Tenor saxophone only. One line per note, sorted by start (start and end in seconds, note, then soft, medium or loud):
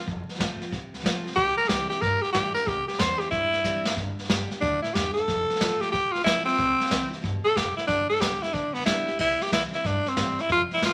1.36 1.57 G4 loud
1.58 1.69 A#4 medium
1.68 1.89 G4 loud
1.89 2.03 G4 medium
2.01 2.23 A#4 loud
2.22 2.32 G4 loud
2.33 2.53 G4 loud
2.54 2.68 A#4 loud
2.67 2.87 G4 loud
2.87 3.01 G4 medium
3.00 3.21 C5 loud
3.19 3.30 G4 loud
3.31 3.95 E4 loud
4.61 4.82 D4 loud
4.82 4.95 E4 medium
4.94 5.13 G4 loud
5.13 5.82 A4 loud
5.80 5.91 G4 loud
5.91 6.13 G4 loud
6.12 6.23 F4 medium
6.24 6.45 E4 loud
6.45 7.09 C4 loud
7.44 7.57 A4 loud
7.56 7.76 G4 loud
7.77 7.86 E4 medium
7.87 8.08 D4 loud
8.09 8.21 A4 loud
8.20 8.44 G4 loud
8.42 8.55 E4 loud
8.53 8.75 D4 medium
8.73 8.85 B3 loud
8.86 9.16 E4 loud
9.20 9.44 E4 loud
9.42 9.52 G4 loud
9.53 9.62 E4 loud
9.75 9.88 E4 medium
9.86 10.10 D4 medium
10.08 10.42 C4 medium
10.41 10.51 E4 medium
10.52 10.61 F4 loud
10.74 10.83 E4 loud
10.86 10.93 F4 loud